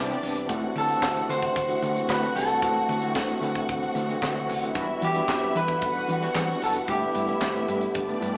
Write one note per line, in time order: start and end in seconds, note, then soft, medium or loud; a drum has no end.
0.00 0.14 C3 medium
0.00 4.71 C3 medium
0.00 0.08 E3 loud
0.00 0.10 G3 medium
0.00 0.45 G3 medium
0.00 0.09 B3 medium
0.00 0.09 C4 medium
0.00 0.10 D4 medium
0.00 0.48 D4 medium
0.00 4.71 D4 medium
0.00 2.58 E4 medium
0.00 0.10 G4 loud
0.00 0.19 B4 medium
0.00 0.45 B4 medium
0.00 0.47 D5 medium
0.08 0.40 E3 medium
0.08 0.40 B3 medium
0.08 0.40 C4 medium
0.08 0.40 D4 medium
0.08 0.40 G4 loud
0.08 muted clean electric guitar stroke soft
0.08 closed hi-hat soft
0.08 shaker medium
0.22 0.49 C2 medium
0.22 muted clean electric guitar stroke medium
0.22 open hi-hat medium
0.22 shaker medium
0.35 0.48 G3 medium
0.35 0.48 D4 medium
0.35 0.47 E4 medium
0.35 0.47 B4 medium
0.35 closed hi-hat medium
0.35 shaker medium
0.48 0.67 D2 loud
0.48 0.80 E3 medium
0.48 4.72 F#3 medium
0.48 0.80 A3 medium
0.48 0.64 A3 loud
0.48 4.71 A3 medium
0.48 0.80 C4 loud
0.48 0.80 D4 loud
0.48 0.63 E4 loud
0.48 4.71 F#4 medium
0.48 0.62 F#4 loud
0.48 0.80 F#4 loud
0.48 0.61 C5 loud
0.48 4.71 F#5 medium
0.48 kick loud
0.48 closed hi-hat medium
0.48 shaker medium
0.62 muted clean electric guitar stroke medium
0.62 shaker medium
0.75 0.94 D3 loud
0.75 0.87 A3 medium
0.75 0.88 E4 medium
0.75 0.88 F#4 medium
0.75 1.30 A4 loud
0.75 0.88 C5 medium
0.75 closed hi-hat medium
0.75 shaker soft
0.88 1.20 E3 medium
0.88 1.20 A3 medium
0.88 1.02 A3 medium
0.88 1.20 C4 medium
0.88 1.20 D4 medium
0.88 1.01 E4 medium
0.88 1.20 F#4 medium
0.88 1.01 F#4 medium
0.88 1.01 C5 medium
0.88 closed hi-hat soft
0.88 shaker medium
1.02 1.20 D2 loud
1.02 kick loud
1.02 snare loud
1.02 clap medium
1.02 shaker medium
1.15 1.29 A3 medium
1.15 1.29 E4 medium
1.15 1.29 F#4 medium
1.15 1.30 C5 medium
1.15 closed hi-hat soft
1.15 shaker medium
1.28 1.47 D3 loud
1.28 1.80 E3 medium
1.28 1.80 A3 medium
1.28 1.41 A3 medium
1.28 1.81 C4 medium
1.28 1.81 D4 medium
1.28 1.41 E4 medium
1.28 1.81 F#4 medium
1.28 1.41 F#4 medium
1.28 2.09 C5 loud
1.28 1.41 C5 medium
1.28 closed hi-hat medium
1.42 kick medium
1.42 closed hi-hat soft
1.42 shaker medium
1.56 1.74 D2 loud
1.56 kick loud
1.56 closed hi-hat medium
1.56 shaker medium
1.69 1.81 A3 medium
1.69 1.81 E4 medium
1.69 1.81 F#4 medium
1.69 1.80 C5 medium
1.69 closed hi-hat soft
1.69 shaker medium
1.82 2.00 D3 loud
1.82 1.97 A3 medium
1.82 1.96 E4 loud
1.82 1.95 F#4 medium
1.82 1.95 C5 medium
1.82 closed hi-hat medium
1.82 shaker medium
1.95 2.16 E3 medium
1.95 2.16 A3 medium
1.95 2.16 C4 medium
1.95 2.16 D4 medium
1.95 2.17 F#4 medium
1.95 muted clean electric guitar stroke medium
1.95 closed hi-hat soft
1.95 shaker medium
2.09 2.27 D3 medium
2.09 2.23 A3 medium
2.09 2.22 E4 loud
2.09 2.22 F#4 loud
2.09 2.36 B4 loud
2.09 2.21 C5 loud
2.09 kick loud
2.09 snare loud
2.09 clap medium
2.09 shaker medium
2.22 2.53 E3 medium
2.22 2.53 A3 medium
2.22 2.53 C4 medium
2.22 2.54 D4 medium
2.22 2.54 F#4 medium
2.22 muted clean electric guitar stroke soft
2.22 closed hi-hat soft
2.22 shaker medium
2.35 2.62 C2 loud
2.35 3.12 A4 medium
2.35 muted clean electric guitar stroke medium
2.35 open hi-hat medium
2.35 shaker medium
2.48 2.61 A3 medium
2.48 2.61 E4 medium
2.48 2.60 F#4 medium
2.48 2.60 C5 medium
2.48 closed hi-hat soft
2.48 shaker medium
2.61 2.80 D2 loud
2.61 2.93 E3 medium
2.61 2.93 A3 medium
2.61 2.77 A3 medium
2.61 2.93 C4 medium
2.61 2.93 D4 medium
2.61 2.76 E4 loud
2.61 2.93 F#4 loud
2.61 2.75 F#4 loud
2.61 6.84 A4 medium
2.61 2.74 C5 loud
2.61 kick loud
2.61 closed hi-hat medium
2.61 shaker medium
2.76 muted clean electric guitar stroke soft
2.76 shaker medium
2.88 3.17 D3 loud
2.88 3.00 A3 medium
2.88 3.00 E4 medium
2.88 3.00 F#4 medium
2.88 3.01 C5 medium
2.88 closed hi-hat medium
2.88 shaker soft
3.01 3.33 E3 medium
3.01 3.33 A3 medium
3.01 3.14 A3 medium
3.01 3.33 C4 medium
3.01 3.33 D4 medium
3.01 3.14 E4 medium
3.01 3.14 F#4 medium
3.01 3.33 F#4 loud
3.01 3.13 C5 medium
3.01 closed hi-hat medium
3.01 shaker medium
3.15 3.33 D2 loud
3.15 muted clean electric guitar stroke soft
3.15 kick loud
3.15 snare loud
3.15 clap medium
3.15 shaker medium
3.29 3.40 A3 medium
3.29 3.41 E4 medium
3.29 3.42 F#4 medium
3.29 3.42 C5 medium
3.29 closed hi-hat soft
3.29 shaker medium
3.41 3.59 D3 medium
3.41 3.93 E3 medium
3.41 3.93 A3 medium
3.41 3.53 A3 medium
3.41 3.93 C4 medium
3.41 3.94 D4 medium
3.41 3.54 E4 medium
3.41 3.94 E4 loud
3.41 3.54 F#4 medium
3.41 3.54 C5 medium
3.41 closed hi-hat medium
3.55 muted clean electric guitar stroke medium
3.55 kick medium
3.55 closed hi-hat soft
3.55 shaker medium
3.69 3.87 D2 loud
3.69 muted clean electric guitar stroke soft
3.69 kick loud
3.69 closed hi-hat medium
3.69 shaker medium
3.82 3.94 A3 medium
3.82 3.94 E4 medium
3.82 3.94 F#4 medium
3.82 3.94 C5 medium
3.82 closed hi-hat soft
3.82 shaker medium
3.95 4.13 D3 loud
3.95 4.10 A3 loud
3.95 4.09 E4 medium
3.95 4.08 F#4 loud
3.95 4.08 C5 loud
3.95 closed hi-hat medium
3.95 shaker medium
4.07 4.29 E3 loud
4.07 4.29 A3 medium
4.07 4.29 C4 medium
4.07 4.29 D4 medium
4.07 4.29 F#4 loud
4.07 muted clean electric guitar stroke soft
4.07 closed hi-hat soft
4.07 shaker medium
4.22 4.51 D3 loud
4.22 4.36 A3 medium
4.22 4.35 E4 medium
4.22 4.35 F#4 medium
4.22 4.34 C5 loud
4.22 kick loud
4.22 snare loud
4.22 clap medium
4.22 shaker medium
4.34 4.66 E3 loud
4.34 4.66 A3 medium
4.34 4.66 C4 medium
4.34 4.66 D4 medium
4.34 4.66 F#4 loud
4.34 muted clean electric guitar stroke medium
4.34 shaker medium
4.48 4.75 D2 loud
4.48 muted clean electric guitar stroke soft
4.48 open hi-hat medium
4.48 shaker medium
4.61 4.74 A3 medium
4.61 4.74 E4 medium
4.61 4.73 F#4 medium
4.61 4.73 C5 medium
4.61 closed hi-hat soft
4.61 shaker medium
4.74 4.93 E2 loud
4.74 8.37 D3 medium
4.74 5.06 E3 loud
4.74 6.86 G3 medium
4.74 4.90 G3 medium
4.74 5.06 G3 medium
4.74 6.86 B3 medium
4.74 5.06 B3 medium
4.74 4.88 D4 loud
4.74 5.07 D4 loud
4.74 8.37 E4 medium
4.74 5.80 E4 medium
4.74 4.87 F#4 loud
4.74 5.07 F#4 loud
4.74 4.87 B4 loud
4.74 5.80 E5 medium
4.74 kick loud
4.74 closed hi-hat medium
4.74 shaker medium
4.88 muted clean electric guitar stroke soft
4.88 shaker medium
5.00 5.20 E3 loud
5.00 5.13 G3 medium
5.00 5.13 D4 medium
5.00 5.13 F#4 medium
5.00 5.13 B4 medium
5.00 closed hi-hat medium
5.00 shaker medium
5.04 5.56 G4 loud
5.14 5.46 E3 medium
5.14 5.46 G3 medium
5.14 5.26 G3 medium
5.14 5.46 B3 medium
5.14 5.27 D4 medium
5.14 5.47 D4 medium
5.14 5.26 F#4 medium
5.14 5.47 G4 medium
5.14 5.26 B4 medium
5.14 closed hi-hat medium
5.14 shaker medium
5.27 5.46 E2 loud
5.27 muted clean electric guitar stroke medium
5.27 kick loud
5.27 snare loud
5.27 clap loud
5.27 shaker medium
5.41 5.53 G3 medium
5.41 5.54 D4 medium
5.41 5.54 F#4 medium
5.41 5.55 B4 loud
5.41 shaker medium
5.54 6.06 E3 medium
5.54 5.84 E3 loud
5.54 5.66 G3 medium
5.54 6.06 G3 medium
5.54 6.07 B3 medium
5.54 5.66 D4 medium
5.54 6.07 D4 medium
5.54 5.67 F#4 medium
5.54 6.07 A4 medium
5.54 5.67 B4 medium
5.54 6.63 B4 loud
5.54 closed hi-hat medium
5.68 muted clean electric guitar stroke soft
5.68 kick medium
5.68 closed hi-hat soft
5.68 shaker medium
5.81 6.00 E2 loud
5.81 6.86 F#4 medium
5.81 6.86 F#5 medium
5.81 muted clean electric guitar stroke soft
5.81 kick loud
5.81 closed hi-hat medium
5.81 shaker medium
5.94 6.06 G3 medium
5.94 6.06 D4 medium
5.94 6.06 F#4 medium
5.94 6.06 B4 medium
5.94 closed hi-hat soft
5.94 shaker medium
6.07 6.27 E3 loud
6.07 6.23 G3 medium
6.07 6.21 D4 loud
6.07 6.21 F#4 medium
6.07 6.20 B4 loud
6.07 closed hi-hat medium
6.07 shaker medium
6.21 6.42 E3 loud
6.21 6.42 G3 medium
6.21 6.42 B3 medium
6.21 6.43 D4 medium
6.21 6.43 F#4 loud
6.21 muted clean electric guitar stroke medium
6.21 snare soft
6.21 closed hi-hat soft
6.21 shaker medium
6.34 6.53 E3 loud
6.34 6.49 G3 medium
6.34 6.48 D4 medium
6.34 6.47 F#4 medium
6.34 6.47 B4 loud
6.34 kick loud
6.34 snare loud
6.34 clap medium
6.34 shaker medium
6.48 6.79 E3 medium
6.48 6.79 G3 medium
6.48 6.80 B3 medium
6.48 6.80 D4 medium
6.48 6.80 F#4 medium
6.48 muted clean electric guitar stroke soft
6.48 shaker medium
6.61 6.80 F#1 medium
6.61 6.71 A4 loud
6.61 muted clean electric guitar stroke medium
6.61 open hi-hat medium
6.61 shaker medium
6.74 6.87 G3 soft
6.74 6.87 D4 medium
6.74 6.86 F#4 medium
6.74 6.86 B4 medium
6.74 closed hi-hat soft
6.74 shaker medium
6.87 7.06 G1 loud
6.87 7.19 E3 medium
6.87 7.03 A3 medium
6.87 7.19 A3 medium
6.87 8.37 A3 medium
6.87 7.20 B3 medium
6.87 8.37 B3 medium
6.87 7.20 D4 medium
6.87 7.93 E4 medium
6.87 7.02 E4 medium
6.87 8.37 G4 medium
6.87 7.01 G4 loud
6.87 8.37 G4 loud
6.87 7.20 G4 medium
6.87 7.00 B4 loud
6.87 7.93 E5 medium
6.87 kick loud
6.87 closed hi-hat medium
6.87 shaker medium
7.01 muted clean electric guitar stroke medium
7.01 shaker medium
7.15 7.33 G2 loud
7.15 7.26 A3 medium
7.15 7.27 E4 medium
7.15 7.27 G4 medium
7.15 7.27 B4 medium
7.15 closed hi-hat medium
7.15 shaker soft
7.27 7.59 E3 medium
7.27 7.59 A3 medium
7.27 7.40 A3 medium
7.27 7.59 B3 medium
7.27 7.60 D4 medium
7.27 7.40 E4 medium
7.27 7.40 G4 medium
7.27 7.60 G4 medium
7.27 7.40 B4 medium
7.27 closed hi-hat soft
7.27 shaker medium
7.41 7.59 G1 loud
7.41 muted clean electric guitar stroke soft
7.41 kick loud
7.41 snare loud
7.41 clap loud
7.41 shaker medium
7.54 7.66 A3 medium
7.54 7.67 E4 medium
7.54 7.68 G4 loud
7.54 7.68 B4 loud
7.54 closed hi-hat soft
7.54 shaker medium
7.67 7.86 G2 loud
7.67 8.20 E3 medium
7.67 7.79 A3 medium
7.67 8.20 A3 medium
7.67 8.20 B3 medium
7.67 8.20 D4 medium
7.67 7.80 E4 medium
7.67 7.80 G4 medium
7.67 8.20 G4 medium
7.67 7.80 B4 medium
7.67 closed hi-hat medium
7.81 muted clean electric guitar stroke medium
7.81 closed hi-hat soft
7.81 shaker medium
7.95 8.13 G1 loud
7.95 8.37 D4 medium
7.95 8.37 D5 medium
7.95 muted clean electric guitar stroke soft
7.95 kick loud
7.95 closed hi-hat medium
7.95 shaker medium
8.07 8.19 A3 medium
8.07 8.20 E4 medium
8.07 8.20 G4 medium
8.07 8.19 B4 medium
8.07 closed hi-hat soft
8.07 shaker medium
8.20 8.37 G2 medium
8.20 8.36 A3 loud
8.20 8.34 E4 loud
8.20 8.34 G4 loud
8.20 8.33 B4 loud
8.20 closed hi-hat medium
8.20 shaker medium
8.34 8.37 E3 medium
8.34 8.37 A3 medium